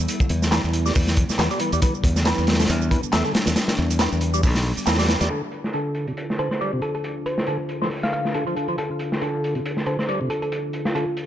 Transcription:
Already playing: analog synth pad G3 B3 E4
0.08 closed hi-hat, shaker
0.20 kick, shaker
0.29 fingered electric bass E2, closed hi-hat
0.42 snare, shaker
0.52 tonewheel organ E3, snare, clap, closed hi-hat, shaker
0.64 fingered electric bass E2, shaker
0.73 closed hi-hat
0.86 tonewheel organ G3, snare, shaker
0.95 fingered electric bass E2, kick, open hi-hat, shaker
1.07 snare, shaker
1.17 kick, closed hi-hat
1.29 muted fingered electric bass stroke, snare, shaker
1.39 fingered electric bass E2, tonewheel organ E3, snare, clap, closed hi-hat, shaker
1.51 tonewheel organ G3, closed hi-hat, shaker
1.60 tonewheel organ E3, closed hi-hat
1.72 fingered electric bass E2, tonewheel organ G3, closed hi-hat, shaker
1.82 tonewheel organ E3, analog synth pad D4, kick, closed hi-hat, shaker
1.95 shaker
2.04 fingered electric bass E2, kick, closed hi-hat
2.16 snare, shaker
2.25 tonewheel organ E3, snare, clap, closed hi-hat, shaker
2.38 fingered electric bass E2, shaker
2.47 snare, closed hi-hat
2.53 snare, closed hi-hat
2.59 tonewheel organ D3, snare, closed hi-hat, shaker
2.65 snare, closed hi-hat
2.69 fingered electric bass E2, closed hi-hat, shaker
2.82 shaker
2.91 tonewheel organ E3, kick, closed hi-hat
3.03 muted fingered electric bass stroke, shaker
3.12 fingered electric bass E2, tonewheel organ A3, snare, clap, closed hi-hat, shaker
3.25 tonewheel organ D3, shaker
3.35 snare, closed hi-hat
3.46 fingered electric bass E2, snare, closed hi-hat, shaker
3.56 snare, closed hi-hat, shaker
3.68 snare, closed hi-hat, shaker
3.79 fingered electric bass E2
3.90 closed hi-hat, shaker
3.99 tonewheel organ E3, snare, clap, closed hi-hat, shaker
4.12 fingered electric bass E2, shaker
4.21 closed hi-hat
4.34 tonewheel organ G3, shaker
4.43 fingered electric bass B1, kick, open hi-hat, shaker
4.54 snare, shaker
4.77 muted fingered electric bass stroke, shaker
4.87 fingered electric bass E2, tonewheel organ E3, snare, clap, closed hi-hat, shaker
4.93 snare, closed hi-hat
4.99 tonewheel organ G3, snare, closed hi-hat, shaker
5.03 snare, closed hi-hat
5.08 tonewheel organ E3, snare, closed hi-hat
5.21 fingered electric bass E2, tonewheel organ G3, snare, closed hi-hat, shaker
5.30 tonewheel organ D3, analog synth pad D3 D4 F4 A4, closed hi-hat
5.52 closed hi-hat
5.64 snare
5.73 tonewheel organ D3, closed hi-hat
5.95 closed hi-hat
6.07 tonewheel organ C3, closed hi-hat
6.17 closed hi-hat
6.30 snare
6.39 tonewheel organ D3, synth pluck C5, closed hi-hat
6.51 synth pluck C5, snare
6.61 tonewheel organ G3, closed hi-hat
6.73 tonewheel organ C3
6.82 synth pluck A4, closed hi-hat
6.95 synth pluck A4, closed hi-hat
7.04 closed hi-hat
7.26 synth pluck C5, closed hi-hat
7.38 snare
7.47 tonewheel organ D3, closed hi-hat
7.69 closed hi-hat
7.82 tonewheel organ F3, snare
7.91 open hi-hat
8.03 synth pluck F5, snare
8.13 synth pluck F5, closed hi-hat
8.25 snare
8.34 tonewheel organ D3, closed hi-hat
8.47 tonewheel organ F3, closed hi-hat
8.57 tonewheel organ D3, closed hi-hat
8.68 tonewheel organ F3, closed hi-hat
8.78 tonewheel organ D3, closed hi-hat
8.99 closed hi-hat
9.12 snare
9.22 tonewheel organ D3, closed hi-hat
9.44 closed hi-hat
9.55 tonewheel organ C3, closed hi-hat
9.66 closed hi-hat
9.77 snare
9.86 tonewheel organ D3, synth pluck C5, closed hi-hat
9.99 synth pluck C5, snare
10.09 tonewheel organ G3, closed hi-hat
10.21 tonewheel organ C3
10.30 synth pluck A4, closed hi-hat
10.42 synth pluck A4, closed hi-hat
10.52 closed hi-hat
10.73 closed hi-hat
10.85 synth pluck F4, snare
10.95 tonewheel organ D3, synth pluck F4, closed hi-hat
11.17 closed hi-hat

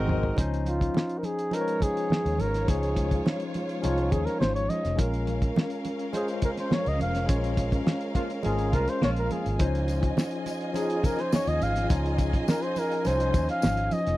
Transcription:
Already playing: fingered electric bass G#1, tine electric piano G#3 C4 D#4 F#4 A#4, string section C4 A#4 D#5, flute section A#4 D#5 G#5 C6
0.07 mid tom, high conga
0.23 floor tom
0.36 fingered electric bass C#2, tine electric piano F3 C#4 D#4 C5, kick, closed hi-hat, muted conga
0.54 closed hi-hat
0.66 flugelhorn F4, closed hi-hat, muted conga
0.81 kick, closed hi-hat
0.94 snare, high conga
1.09 closed hi-hat
1.18 flugelhorn A#4
1.23 flugelhorn G#4, closed hi-hat, muted conga
1.39 closed hi-hat
1.51 tine electric piano F3 C#4 D#4 B4, string section G#3 F4 C#5, flugelhorn A#4, closed hi-hat, muted conga
1.61 tine electric piano C#5
1.68 closed hi-hat
1.80 flugelhorn G#4, kick, closed hi-hat, low conga
1.97 closed hi-hat
2.10 snare, high conga
2.25 fingered electric bass D#2, closed hi-hat
2.39 fingered electric bass G#1, flugelhorn A#4, closed hi-hat, high conga
2.54 snare, closed hi-hat
2.67 fingered electric bass C#2, tine electric piano F3 C#4 D#4 C#5, flugelhorn G#4, kick, closed hi-hat, muted conga
2.83 closed hi-hat
2.96 kick, closed hi-hat
3.11 kick, closed hi-hat
3.26 snare, high conga
3.40 closed hi-hat
3.54 closed hi-hat, muted conga
3.69 closed hi-hat
3.82 fingered electric bass C2, tine electric piano F3 C#4 D#4 C#5, flugelhorn F4, closed hi-hat, muted conga
3.98 closed hi-hat
4.12 fingered electric bass D#2, flugelhorn G#4, kick, closed hi-hat, low conga
4.25 flugelhorn A#4, snare, closed hi-hat
4.40 fingered electric bass G#1, flugelhorn C5, snare, high conga
4.54 flugelhorn C#5, closed hi-hat
4.69 flugelhorn D#5, closed hi-hat, high conga
4.85 fingered electric bass F1, snare, closed hi-hat
4.95 fingered electric bass A#1, tine electric piano G#3 C#4 F4 A#4, string section C#4 A#4 F5, kick, closed hi-hat, muted conga
5.14 closed hi-hat
5.27 closed hi-hat, muted conga
5.42 kick, closed hi-hat
5.56 snare, high conga
5.70 closed hi-hat
5.85 closed hi-hat, muted conga
5.99 closed hi-hat
6.12 tine electric piano G#3 C#4 F4 C5, flugelhorn G#4, closed hi-hat, muted conga
6.28 closed hi-hat
6.42 flugelhorn A#4, kick, closed hi-hat, low conga
6.57 flugelhorn C5, snare, closed hi-hat
6.71 flugelhorn C#5, snare, high conga
6.86 fingered electric bass C#2, flugelhorn D#5, closed hi-hat
6.99 fingered electric bass F1, flugelhorn F5, closed hi-hat, high conga
7.15 snare, closed hi-hat
7.26 fingered electric bass A#1, tine electric piano G#3 C#4 F4 C#5, kick, closed hi-hat, muted conga
7.44 closed hi-hat
7.57 kick, closed hi-hat, muted conga
7.72 kick, closed hi-hat
7.87 snare, high conga
8.01 closed hi-hat
8.15 horn section C#3 F3 A#3 F4, kick, closed hi-hat, muted conga
8.30 closed hi-hat
8.42 fingered electric bass G#1, horn section C#3 F3 A#3 F4, tine electric piano G#3 C#4 F4 A#4, flugelhorn G#4, closed hi-hat, muted conga
8.59 closed hi-hat
8.72 fingered electric bass C2, horn section C#3 F3 A#3 F4, flugelhorn A#4, kick, closed hi-hat, low conga
8.87 flugelhorn C5, snare, closed hi-hat
9.01 fingered electric bass A#1, horn section C#3 F3 A#3 F4, flugelhorn C#5, snare, high conga
9.16 flugelhorn A#4, closed hi-hat
9.31 flugelhorn G#4, closed hi-hat, high conga
9.46 fingered electric bass G#1, closed hi-hat
9.58 fingered electric bass C#2, tine electric piano F3 C#4 D#4 C5, string section F4 D#5 G#5, flute section G#4 D#5 F5, kick, closed hi-hat, muted conga
9.75 closed hi-hat
9.88 closed hi-hat, tambourine, muted conga
10.03 kick, closed hi-hat
10.17 snare, tambourine, high conga
10.31 closed hi-hat
10.46 closed hi-hat, tambourine, muted conga
10.61 closed hi-hat
10.73 tine electric piano F3 C#4 D#4 G#4, flugelhorn G#4, closed hi-hat, tambourine, muted conga
10.90 closed hi-hat
11.03 flugelhorn A#4, kick, closed hi-hat, tambourine, low conga
11.18 flugelhorn C5, snare, closed hi-hat
11.32 flugelhorn C#5, snare, tambourine, high conga
11.47 fingered electric bass D#2, flugelhorn D#5, closed hi-hat
11.61 fingered electric bass G#1, flugelhorn F5, closed hi-hat, tambourine, high conga
11.76 snare, closed hi-hat
11.89 fingered electric bass C#2, tine electric piano F3 C#4 D#4 F4, kick, closed hi-hat, tambourine, muted conga
12.06 closed hi-hat
12.18 kick, closed hi-hat, tambourine
12.33 kick, closed hi-hat
12.48 flugelhorn A#4, snare, tambourine, high conga
12.62 flugelhorn C5, closed hi-hat
12.76 flugelhorn A#4, closed hi-hat, tambourine, muted conga
12.92 closed hi-hat
13.04 fingered electric bass C2, tine electric piano F3 C#4 D#4 C5, flugelhorn C5, closed hi-hat, tambourine, muted conga
13.20 closed hi-hat
13.33 fingered electric bass D#2, kick, closed hi-hat, tambourine, low conga
13.49 flugelhorn F5, snare, closed hi-hat
13.62 fingered electric bass G#1, snare, tambourine, high conga
13.77 closed hi-hat
13.91 flugelhorn D#5, closed hi-hat, tambourine, high conga
14.07 fingered electric bass F1, snare, closed hi-hat

